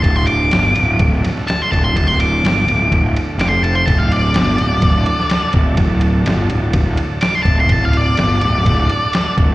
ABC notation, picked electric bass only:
X:1
M:4/4
L:1/8
Q:1/4=125
K:Dmix
V:1 name="Picked electric bass" clef=bass
D,,,2 G,,, D,,, D,,, z2 D,,, | D,,,2 G,,, D,,, D,,, z =F,,,2 | D,,,2 G,,, D,,, D,,, z2 D,,, | D,,,2 G,,, D,,, D,,, z2 D,,, |
D,,,2 G,,, D,,, D,,, z2 D,,, |]